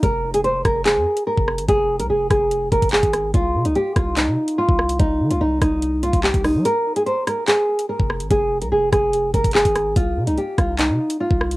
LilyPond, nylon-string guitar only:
\new Staff \with { instrumentName = "Nylon-string guitar" } { \time 4/4 \key f \minor \tempo 4 = 145 bes'8. aes'16 c''8 bes'8 aes'4 bes'4 | aes'8. bes'16 aes'8 aes'4 bes'8 aes'4 | f'8. ees'16 g'8 f'8 ees'4 f'4 | ees'8. f'16 ees'8 ees'4 f'8 g'8 ees'8 |
bes'8. aes'16 c''8 bes'8 aes'4 bes'4 | aes'8. bes'16 aes'8 aes'4 bes'8 aes'4 | f'8. ees'16 g'8 f'8 ees'4 f'4 | }